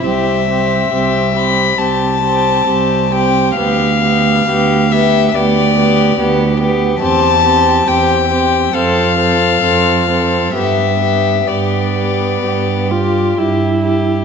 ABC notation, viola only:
X:1
M:4/4
L:1/8
Q:1/4=67
K:C
V:1 name="Viola"
C C C C C C C C | B, B, B, B, B, B, B, B, | C C C C C C C C | B, B, B,3 F E2 |]